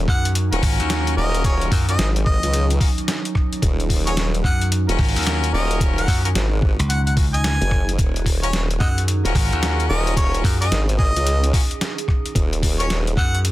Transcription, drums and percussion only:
0.08 kick loud
0.08 cross-stick soft
0.25 closed hi-hat medium
0.35 closed hi-hat medium
0.52 closed hi-hat soft
0.62 kick loud
0.62 open hi-hat medium
0.80 closed hi-hat soft
0.90 snare loud
0.90 closed hi-hat medium
1.07 closed hi-hat soft
1.35 closed hi-hat soft
1.44 kick loud
1.44 closed hi-hat medium
1.61 closed hi-hat soft
1.72 kick medium
1.72 open hi-hat medium
1.89 closed hi-hat medium
1.99 snare loud
1.99 closed hi-hat medium
2.16 closed hi-hat soft
2.26 kick loud
2.43 closed hi-hat medium
2.54 closed hi-hat medium
2.70 closed hi-hat soft
2.81 kick loud
2.81 open hi-hat medium
2.98 closed hi-hat soft
3.08 snare loud
3.08 closed hi-hat medium
3.25 closed hi-hat soft
3.35 kick medium
3.35 cross-stick soft
3.53 closed hi-hat soft
3.62 kick loud
3.62 closed hi-hat medium
3.80 closed hi-hat soft
3.90 kick medium
3.90 open hi-hat medium
4.07 closed hi-hat medium
4.17 snare loud
4.17 closed hi-hat medium
4.34 closed hi-hat soft
4.44 kick loud
4.44 cross-stick soft
4.61 closed hi-hat medium
4.72 closed hi-hat medium
4.89 closed hi-hat soft
4.99 kick loud
4.99 open hi-hat soft
5.05 open hi-hat soft
5.08 open hi-hat soft
5.16 closed hi-hat soft
5.16 open hi-hat soft
5.23 snare loud
5.23 closed hi-hat medium
5.23 open hi-hat medium
5.44 closed hi-hat soft
5.71 closed hi-hat soft
5.80 kick loud
5.80 closed hi-hat medium
5.98 closed hi-hat soft
6.08 kick medium
6.08 open hi-hat medium
6.25 closed hi-hat medium
6.35 snare loud
6.35 closed hi-hat medium
6.62 kick loud
6.80 closed hi-hat medium
6.90 closed hi-hat medium
7.07 closed hi-hat soft
7.17 kick loud
7.17 open hi-hat medium
7.34 closed hi-hat soft
7.44 snare loud
7.44 closed hi-hat medium
7.62 closed hi-hat soft
7.71 kick medium
7.71 cross-stick soft
7.89 closed hi-hat soft
7.99 kick loud
7.99 closed hi-hat medium
8.16 closed hi-hat soft
8.26 kick medium
8.26 open hi-hat medium
8.43 closed hi-hat medium
8.53 snare loud
8.53 closed hi-hat medium
8.71 closed hi-hat soft
8.80 kick loud
8.80 cross-stick soft
8.98 closed hi-hat medium
9.08 closed hi-hat medium
9.25 closed hi-hat soft
9.35 kick loud
9.35 open hi-hat medium
9.53 closed hi-hat soft
9.63 snare loud
9.63 closed hi-hat medium
9.80 closed hi-hat soft
10.07 closed hi-hat soft
10.17 kick loud
10.17 closed hi-hat medium
10.34 closed hi-hat soft
10.44 kick medium
10.44 open hi-hat medium
10.62 closed hi-hat medium
10.72 snare loud
10.72 closed hi-hat medium
10.89 closed hi-hat soft
10.99 kick loud
11.16 closed hi-hat medium
11.27 closed hi-hat medium
11.44 closed hi-hat soft
11.53 kick loud
11.53 open hi-hat medium
11.71 closed hi-hat soft
11.81 snare loud
11.81 closed hi-hat medium
11.98 closed hi-hat soft
12.08 kick medium
12.08 cross-stick soft
12.26 closed hi-hat soft
12.35 kick loud
12.35 closed hi-hat medium
12.53 closed hi-hat soft
12.63 kick medium
12.63 open hi-hat medium
12.80 closed hi-hat medium
12.90 snare loud
12.90 closed hi-hat medium
13.07 closed hi-hat soft
13.17 kick loud
13.17 cross-stick soft
13.35 closed hi-hat medium
13.45 closed hi-hat medium

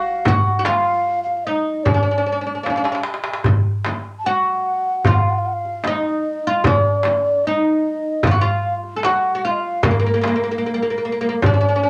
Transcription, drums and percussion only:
0.25 frame drum medium
0.25 darbuka dum medium
0.65 darbuka tek medium
0.65 frame drum medium
1.07 darbuka ka soft
1.27 darbuka ka soft
1.86 frame drum medium
1.86 darbuka dum medium
2.46 darbuka ka soft
2.66 darbuka tek soft
2.66 frame drum medium
2.76 darbuka ka soft
2.85 darbuka tek medium
2.95 darbuka ka medium
3.03 darbuka tek medium
3.14 darbuka ka medium
3.24 darbuka tek medium
3.34 darbuka ka medium
3.44 darbuka dum medium
3.44 frame drum medium
3.85 darbuka tek medium
3.85 frame drum medium
4.24 darbuka ka soft
4.44 darbuka ka soft
5.04 darbuka dum medium
5.04 frame drum medium
5.45 darbuka ka soft
5.65 darbuka ka soft
5.84 darbuka tek medium
5.84 frame drum medium
6.64 darbuka dum medium
6.64 frame drum medium
7.03 darbuka tek medium
7.03 frame drum medium
7.44 darbuka ka soft
7.65 darbuka ka soft
8.23 darbuka dum medium
8.23 frame drum medium
8.63 darbuka ka soft
8.83 darbuka ka soft
9.03 darbuka tek medium
9.03 frame drum medium
9.83 darbuka dum medium
9.83 frame drum medium
10.23 darbuka tek medium
10.23 frame drum medium
10.64 darbuka ka soft
10.84 darbuka ka soft
11.42 frame drum medium
11.42 darbuka dum medium
11.84 darbuka ka soft

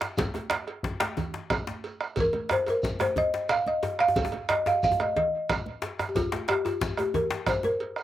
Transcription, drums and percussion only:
0.01 bombo rim medium
0.01 djembe slap medium
0.01 shekere soft
0.18 bombo low loud
0.18 cowbell medium
0.18 djembe slap loud
0.18 high conga soft
0.18 djembe bass medium
0.18 low conga medium
0.18 shekere medium
0.34 bombo rim soft
0.34 cowbell soft
0.34 high conga medium
0.34 djembe tone medium
0.50 bombo rim loud
0.50 djembe slap medium
0.50 shekere soft
0.67 bombo rim soft
0.67 cowbell medium
0.67 high conga soft
0.83 bombo low medium
0.83 djembe slap medium
1.00 bombo rim medium
1.00 cowbell medium
1.00 djembe slap loud
1.00 djembe slap soft
1.00 djembe tone soft
1.00 high conga soft
1.17 cowbell soft
1.17 djembe tone medium
1.17 low conga medium
1.17 djembe bass medium
1.17 shekere soft
1.34 bombo rim soft
1.34 djembe slap medium
1.50 bombo rim loud
1.50 bombo low loud
1.50 cowbell medium
1.50 djembe slap medium
1.50 shekere soft
1.67 djembe slap soft
1.67 djembe slap medium
1.67 djembe tone medium
1.67 high conga medium
1.84 cowbell soft
1.84 djembe slap soft
1.84 shekere soft
2.01 bombo rim medium
2.01 shekere soft
2.16 bombo low medium
2.16 cowbell medium
2.16 djembe slap soft
2.16 high conga soft
2.16 djembe bass medium
2.16 low conga medium
2.16 shekere medium
2.33 bombo rim soft
2.33 cowbell soft
2.33 djembe tone medium
2.33 high conga medium
2.49 bombo rim medium
2.49 djembe slap medium
2.49 djembe tone loud
2.66 bombo rim soft
2.66 cowbell medium
2.66 djembe tone medium
2.66 shekere soft
2.83 bombo low medium
2.83 djembe slap medium
2.83 shekere medium
2.99 bombo rim medium
2.99 cowbell medium
2.99 high conga medium
2.99 djembe tone loud
3.16 cowbell soft
3.16 djembe tone medium
3.16 djembe bass medium
3.16 low conga medium
3.34 djembe slap medium
3.49 bombo rim medium
3.49 cowbell medium
3.49 djembe slap medium
3.49 shekere medium
3.66 high conga medium
3.66 djembe tone medium
3.83 cowbell medium
3.83 djembe slap soft
3.83 djembe tone medium
3.99 bombo rim medium
3.99 shekere soft
4.08 djembe tone medium
4.16 bombo low loud
4.16 cowbell medium
4.16 djembe slap soft
4.16 high conga soft
4.16 low conga medium
4.16 djembe bass medium
4.16 shekere medium
4.25 djembe tone loud
4.32 bombo rim soft
4.32 cowbell soft
4.32 djembe tone medium
4.32 high conga medium
4.49 bombo rim loud
4.49 djembe slap medium
4.49 djembe tone medium
4.66 bombo rim soft
4.66 cowbell medium
4.66 djembe tone medium
4.66 shekere soft
4.83 bombo low medium
4.83 shekere medium
4.91 djembe tone medium
5.00 bombo rim medium
5.00 cowbell soft
5.00 djembe slap soft
5.00 djembe tone medium
5.00 high conga medium
5.16 cowbell medium
5.16 djembe bass medium
5.16 low conga medium
5.50 bombo rim loud
5.50 bombo low medium
5.50 cowbell soft
5.50 djembe slap medium
5.50 shekere soft
5.66 djembe tone medium
5.66 high conga medium
5.82 cowbell medium
5.82 djembe slap medium
5.82 djembe slap soft
5.99 bombo rim medium
5.99 djembe tone medium
5.99 shekere soft
6.15 bombo low loud
6.15 cowbell medium
6.15 djembe slap soft
6.15 high conga soft
6.15 djembe tone medium
6.15 djembe bass medium
6.15 low conga medium
6.15 shekere medium
6.32 bombo rim soft
6.32 cowbell medium
6.32 djembe slap loud
6.32 high conga soft
6.32 djembe tone medium
6.48 bombo rim loud
6.48 djembe slap medium
6.48 djembe tone medium
6.65 bombo rim soft
6.65 cowbell soft
6.65 djembe tone medium
6.65 shekere soft
6.81 bombo low medium
6.81 djembe slap medium
6.81 shekere medium
6.97 bombo rim medium
6.97 cowbell soft
6.97 djembe slap soft
6.97 djembe tone medium
6.97 high conga medium
6.97 djembe tone medium
7.14 cowbell medium
7.14 djembe tone medium
7.14 djembe bass medium
7.14 low conga medium
7.30 djembe slap loud
7.46 bombo rim loud
7.46 bombo low loud
7.46 cowbell soft
7.46 djembe slap medium
7.46 djembe tone medium
7.46 shekere medium
7.63 djembe tone medium
7.63 high conga medium
7.80 cowbell soft
7.80 djembe slap soft
7.96 bombo rim medium
7.96 shekere soft

